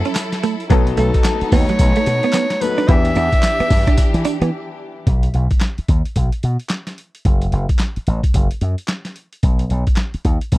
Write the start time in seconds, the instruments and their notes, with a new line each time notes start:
Already playing: grand piano F#3 C#4 E4 A4, string section F#3 E4 A4, alto saxophone E5
0.05 clean electric guitar C#4, closed hi-hat
0.15 snare, clap, closed hi-hat, tambourine
0.32 snare, closed hi-hat
0.43 clean electric guitar A3, closed hi-hat, tambourine
0.60 closed hi-hat
0.70 slap bass B1, grand piano F#3 B3 D#4 A4, string section A3 B3 D#4, clean electric guitar B3, kick, closed hi-hat
0.87 muted clean electric guitar stroke, closed hi-hat
0.97 slap bass B1, clean electric guitar A3, alto saxophone A4, closed hi-hat, tambourine
1.14 kick, closed hi-hat
1.24 muted clean electric guitar stroke, snare, clap, closed hi-hat, tambourine
1.41 muted slap bass stroke, closed hi-hat
1.52 slap bass D#2, clean electric guitar B3, alto saxophone C#5, kick, open hi-hat, tambourine
1.69 clean electric guitar F#3, closed hi-hat
1.79 slap bass B1, kick, closed hi-hat, tambourine
1.96 clean electric guitar A3, closed hi-hat
2.06 slap bass B2, muted clean electric guitar stroke, closed hi-hat, tambourine
2.23 clean electric guitar B3, closed hi-hat
2.33 clean electric guitar B3, snare, clap, closed hi-hat, tambourine
2.50 muted clean electric guitar stroke, snare, closed hi-hat
2.61 grand piano F#3 B3 D#4 A4, alto saxophone B4, closed hi-hat, tambourine
2.78 clean electric guitar D4, closed hi-hat
2.88 slap bass E2, grand piano E3 B3 D4 G4, string section E3 D4 G4, clean electric guitar E4, alto saxophone E5, kick, closed hi-hat
3.05 muted clean electric guitar stroke, closed hi-hat
3.15 slap bass E2, clean electric guitar D4, closed hi-hat, tambourine
3.32 kick, closed hi-hat
3.43 snare, clap, closed hi-hat, tambourine
3.60 clean electric guitar B3, muted slap bass stroke, closed hi-hat
3.70 slap bass G2, muted clean electric guitar stroke, kick, open hi-hat, tambourine
3.87 clean electric guitar D4, kick, closed hi-hat
3.98 muted clean electric guitar stroke, kick, closed hi-hat, tambourine
4.14 slap bass E3, closed hi-hat
4.25 clean electric guitar D4, closed hi-hat, tambourine
4.41 slap bass E3, clean electric guitar B3, closed hi-hat
5.07 slap bass B1, kick, closed hi-hat
5.23 closed hi-hat
5.34 slap bass B1, closed hi-hat
5.51 kick, closed hi-hat
5.61 snare, clap, closed hi-hat
5.78 muted slap bass stroke, closed hi-hat
5.88 slap bass D#2, kick, closed hi-hat
6.05 closed hi-hat
6.16 slap bass B1, kick, closed hi-hat
6.32 closed hi-hat
6.43 slap bass B2, closed hi-hat
6.60 closed hi-hat
6.69 snare, clap, closed hi-hat
6.87 snare, closed hi-hat
6.98 closed hi-hat
7.15 closed hi-hat
7.25 slap bass F#1, kick, closed hi-hat
7.42 closed hi-hat
7.52 slap bass F#1, closed hi-hat
7.69 kick, closed hi-hat
7.79 snare, clap, closed hi-hat
7.96 muted slap bass stroke, closed hi-hat
8.07 slap bass A1, closed hi-hat
8.23 kick, closed hi-hat
8.34 slap bass F#1, kick, closed hi-hat
8.51 closed hi-hat
8.61 slap bass F#2, closed hi-hat
8.78 closed hi-hat
8.88 snare, clap, closed hi-hat
9.05 snare, closed hi-hat
9.16 closed hi-hat
9.33 closed hi-hat
9.43 slap bass B1, kick, closed hi-hat
9.59 closed hi-hat
9.70 slap bass B1, closed hi-hat
9.87 kick, closed hi-hat
9.96 snare, clap, closed hi-hat
10.14 muted slap bass stroke, closed hi-hat
10.25 slap bass D#2, kick, closed hi-hat
10.41 closed hi-hat
10.52 slap bass B1, kick, closed hi-hat